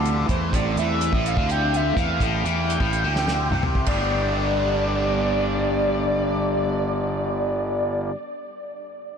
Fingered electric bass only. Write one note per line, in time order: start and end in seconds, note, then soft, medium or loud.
0.00 0.25 D2 medium
0.29 0.51 E2 medium
0.53 0.75 A1 medium
0.76 1.10 E2 medium
1.12 1.34 A1 medium
1.37 1.92 D2 medium
1.96 2.18 E2 medium
2.20 2.42 A1 medium
2.44 2.77 E2 medium
2.81 3.02 A1 medium
3.04 3.48 D2 medium
3.51 3.85 C2 medium
3.87 8.09 G1 medium